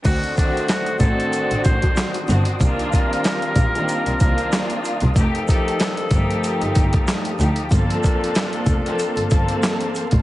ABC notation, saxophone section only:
X:1
M:4/4
L:1/8
Q:"Swing 16ths" 1/4=94
K:Dphr
V:1 name="Saxophone section"
[A,^Fc]6- [A,Fc] z | [G,FB]6- [G,FB] z | [E,CA]6- [E,CA] z | [F,DA]6- [F,DA] z |]